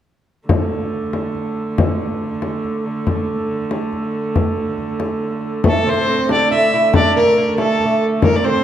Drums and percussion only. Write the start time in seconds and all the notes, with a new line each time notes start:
0.49 frame drum
1.13 frame drum
1.35 frame drum
1.78 frame drum
2.42 frame drum
2.64 frame drum
3.07 frame drum
3.71 frame drum
3.93 frame drum
4.36 frame drum
4.57 frame drum
4.78 frame drum
5.00 frame drum
5.64 frame drum
6.29 frame drum
6.51 frame drum
6.94 frame drum
7.58 frame drum
7.80 frame drum
8.22 frame drum